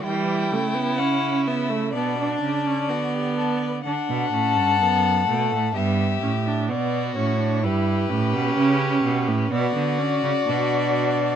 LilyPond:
<<
  \new Staff \with { instrumentName = "Violin" } { \time 4/4 \key b \phrygian \tempo 4 = 63 g''4 fis''8 e''8 d''2 | \key b \minor fis''2 e''4 d''8 cis''8 | b'2 d''2 | }
  \new Staff \with { instrumentName = "Violin" } { \time 4/4 \key b \phrygian e'2 d'4 fis'16 g'16 a'16 b'16 | \key b \minor a'2 g'4 fis'4 | g'2 fis'2 | }
  \new Staff \with { instrumentName = "Viola" } { \time 4/4 \key b \phrygian g8 a16 b16 cis'8 b16 a16 b16 d'8 cis'16 b4 | \key b \minor d'8 cis'8 b8 a8 b8 cis'16 d'16 b8 cis'16 d'16 | e'8 cis'4. b8 cis'8 d'4 | }
  \new Staff \with { instrumentName = "Cello" } { \clef bass \time 4/4 \key b \phrygian e8 cis4. b,8 cis8 d4 | \key b \minor d16 b,16 a,16 g,16 fis,8 b,16 a,16 g,8 a,8 b,8 a,8 | g,8 a,16 b,16 cis8 b,16 a,16 b,16 d8 cis16 b,4 | }
>>